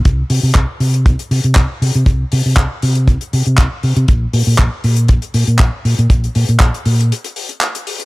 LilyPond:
<<
  \new Staff \with { instrumentName = "Fingered electric bass" } { \clef bass \time 4/4 \key c \minor \tempo 4 = 119 c,16 r16 c16 c16 c,16 r16 c8 c,16 r16 c16 c16 c,16 r16 c16 c16 | c,16 r16 c16 c16 c,16 r16 c8 c,16 r16 c16 c16 c,16 r16 c16 c16 | bes,,16 r16 bes,16 bes,16 bes,,16 r16 bes,8 bes,,16 r16 bes,16 bes,16 bes,,16 r16 bes,16 bes,16 | bes,,16 r16 bes,16 bes,16 bes,,16 r16 bes,8 r2 | }
  \new DrumStaff \with { instrumentName = "Drums" } \drummode { \time 4/4 <hh bd>8 hho8 <hc hh bd>8 hho16 hh16 <hh bd>16 hh16 hho16 hh16 <hc hh bd>8 hho16 hh16 | <hh bd>8 hho8 <hc hh bd>8 hho16 hh16 <hh bd>16 hh16 hho16 hh16 <hc hh bd>8 hho16 hh16 | <hh bd>8 hho8 <hc hh bd>8 hho16 hh16 <hh bd>16 hh16 hho16 hh16 <hc hh bd>8 hho16 hh16 | <hh bd>16 hh16 hho16 hh16 <hc hh bd>16 hh16 hho16 hh16 hh16 hh16 hho16 hh16 <hc hh>16 hh16 hho16 hh16 | }
>>